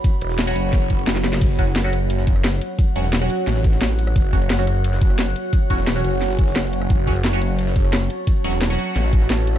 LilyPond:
<<
  \new Staff \with { instrumentName = "Ambient pad" } { \time 4/4 \key fis \minor \tempo 4 = 175 << { b''1 | fis''1~ | fis''1~ | fis''1~ |
fis''1 | a''1~ | a''1 | } \\ { <fis' cis''>1 | <fis' cis''>1~ | <fis' cis''>1~ | <fis' cis''>1~ |
<fis' cis''>1~ | <fis' cis''>1~ | <fis' cis''>1 | } >> }
  \new Staff \with { instrumentName = "Synth stab" } { \time 4/4 \key fis \minor r4 r16 <fis cis' fis'>2~ <fis cis' fis'>8. | r8 <fis cis' fis'>16 r8 <fis cis' fis'>16 r2 r8 | r8 <fis cis' fis'>16 r8 <fis cis' fis'>2~ <fis cis' fis'>8.~ | <fis cis' fis'>8 <fis cis' fis'>16 r8 <fis cis' fis'>16 r2 r8 |
r8 <fis cis' fis'>16 r8 <fis cis' fis'>2~ <fis cis' fis'>8.~ | <fis cis' fis'>8 <fis cis' fis'>16 r8 <fis cis' fis'>16 r2 r8 | r8 <fis cis' fis'>16 r8 <fis cis' fis'>2~ <fis cis' fis'>8. | }
  \new Staff \with { instrumentName = "Detuned saw bass" } { \clef bass \time 4/4 \key fis \minor r8 e,,4 fis,,4. fis,,4 | fis,,2~ fis,,8 fis,,4 r8 | r8 e,,4 r8 a,,2 | fis,,2~ fis,,8 fis,,4 r8 |
r8 e,,4 fis,,2~ fis,,8 | fis,,2~ fis,,8 fis,,4 r8 | r8 e,,4 r8 a,,2 | }
  \new DrumStaff \with { instrumentName = "Drums" } \drummode { \time 4/4 <hh bd cymr>8 <hh cymr>16 sn16 <hh cymr sn>8 <hh cymr>8 <hh bd cymr sn>8 <hh bd cymr>16 cymr16 <hh cymr sn>16 sn16 <hh cymr sn>16 <cymr sn>16 | <cymc hh bd cymr>8 <hh bd cymr>16 cymr16 <hh hho sn>8 <hh cymr ss>8 <hh cymr>16 sn16 <hh bd cymr>16 ss16 <hh cymr sn>8 <hh cymr>8 | <hh bd cymr>8 <hh cymr>16 sn16 <hh cymr sn>8 <hh cymr>8 <hh cymr sn>16 sn16 <hh bd cymr>16 sn16 <hh cymr sn>8 <hh cymr>16 ss16 | <hh bd cymr>8 <hh bd cymr>16 cymr16 <hh hho sn>8 <hh cymr ss>8 <hh cymr>16 sn16 <hh bd cymr>16 ss16 <hh cymr sn>8 <hh cymr>8 |
<hh bd cymr>8 <hh bd cymr>16 sn16 <hh cymr sn>8 <hh cymr>8 <hh cymr sn>16 sn16 <hh bd cymr>16 sn16 <hh cymr sn>8 <hh cymr>16 ss16 | <hh bd cymr>8 <hh bd cymr>16 cymr16 <hh hho sn>8 <hh cymr ss>8 <hh cymr>16 sn16 <hh bd cymr>16 ss16 <hh cymr sn>8 <hh cymr>8 | <hh bd cymr>8 <hh cymr>16 sn16 <hh cymr sn>8 <hh cymr>8 <hh cymr sn>16 sn16 <hh bd cymr>16 sn16 <hh cymr sn>8 <hh cymr>8 | }
>>